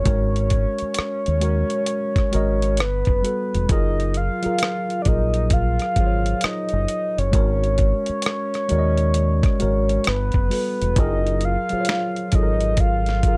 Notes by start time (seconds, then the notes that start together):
Already playing: C#5
0.04 G#1 G#3 F#4 A#4, kick, closed hi-hat
0.08 C#5
0.36 closed hi-hat
0.50 kick, closed hi-hat
0.79 muted fingered electric bass stroke, closed hi-hat
0.94 muted fingered electric bass stroke, closed hi-hat
0.99 cross-stick
1.26 D#2, closed hi-hat
1.40 G#3 F#4 A#4, closed hi-hat
1.44 C#5
1.70 closed hi-hat
1.86 closed hi-hat
2.16 kick, cross-stick, closed hi-hat
2.32 G#1 G#3 F#4 A#4, closed hi-hat
2.36 D#5
2.62 closed hi-hat
2.77 G1 B4, cross-stick, closed hi-hat
3.05 F#1, kick, closed hi-hat
3.22 G3 F#4 A4, closed hi-hat
3.27 B4
3.55 E1, closed hi-hat
3.68 F#1 F#3 F4 G#4 A#4 D#5, kick, closed hi-hat
4.00 closed hi-hat
4.14 F5, closed hi-hat
4.42 F#3 F4 G#4 A#4, muted fingered electric bass stroke, closed hi-hat
4.59 closed hi-hat
4.63 cross-stick
4.90 closed hi-hat
5.02 F#3 D5, kick, closed hi-hat
5.06 A#1 F4 G#4 A#4 D#5
5.34 closed hi-hat
5.50 F5, kick, closed hi-hat
5.79 cross-stick, closed hi-hat
5.96 G#1 F#3 F4 G#4, kick, closed hi-hat
6.00 C5
6.06 C#5
6.26 closed hi-hat
6.41 D#5, muted fingered electric bass stroke, cross-stick, closed hi-hat
6.69 closed hi-hat
6.73 F#1
6.88 closed hi-hat
7.18 F#1 C#5, closed hi-hat
7.32 G#1 G#3 F#4 A#4, kick, closed hi-hat
7.36 C#5
7.64 closed hi-hat
7.78 kick, closed hi-hat
8.06 muted fingered electric bass stroke, closed hi-hat
8.22 closed hi-hat
8.26 cross-stick
8.54 cross-stick, closed hi-hat
8.69 D#2 G#3 F#4 A#4 D5, closed hi-hat
8.79 D#5
8.97 closed hi-hat
9.14 closed hi-hat
9.43 kick, cross-stick, closed hi-hat
9.59 G#1 G#3 F#4 A#4 C#5, closed hi-hat
9.89 closed hi-hat
10.04 G1, cross-stick, closed hi-hat
10.09 B4
10.32 F#1, kick, closed hi-hat
10.49 G3 F#4 A4, open hi-hat
10.54 B4
10.82 E1, closed hi-hat
10.96 F#1 F#3 F4 G#4 D#5, kick, closed hi-hat
11.00 A#4
11.27 closed hi-hat
11.41 closed hi-hat
11.45 F5
11.69 F#3 F4 G#4, muted fingered electric bass stroke, closed hi-hat
11.74 C5
11.81 C#5
11.85 closed hi-hat
11.89 finger snap, snare
12.16 closed hi-hat
12.32 G#1 F#3 F4 G#4 D#5, kick, closed hi-hat
12.36 A4
12.43 A#4
12.61 closed hi-hat
12.77 F5, kick, closed hi-hat
13.06 snare, closed hi-hat
13.23 F#3 F4 G#4, kick, closed hi-hat
13.28 A#4